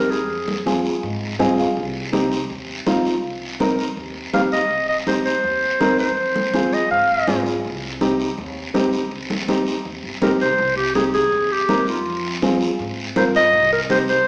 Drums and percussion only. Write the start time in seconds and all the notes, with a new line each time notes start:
0.12 short guiro
0.30 long guiro
0.48 high conga
0.67 high conga, short guiro
0.85 short guiro
1.03 long guiro
1.39 high conga, short guiro
1.58 short guiro
1.77 long guiro
2.13 high conga, short guiro
2.32 short guiro
2.50 long guiro
2.87 high conga, short guiro
3.05 short guiro
3.24 long guiro
3.60 high conga, short guiro
3.79 short guiro
3.97 long guiro
4.34 high conga, short guiro
4.52 short guiro
4.71 long guiro
5.07 high conga, short guiro
5.26 short guiro
5.44 long guiro
5.81 high conga, short guiro
5.99 short guiro
6.17 long guiro
6.36 high conga
6.54 high conga, short guiro
6.73 short guiro
6.91 long guiro
7.27 high conga, short guiro
7.46 short guiro
7.65 long guiro
8.01 high conga, short guiro
8.20 short guiro
8.38 long guiro
8.74 high conga, short guiro
8.93 short guiro
9.11 long guiro
9.30 high conga
9.48 high conga, short guiro
9.67 short guiro
9.85 long guiro
10.22 high conga, short guiro
10.40 short guiro
10.58 long guiro
10.95 high conga, short guiro
11.14 short guiro
11.32 long guiro
11.69 high conga, short guiro
11.87 short guiro
12.06 long guiro
12.42 high conga, short guiro
12.61 short guiro
12.79 long guiro
13.16 high conga, short guiro
13.35 short guiro
13.53 long guiro
13.90 high conga, short guiro
14.08 short guiro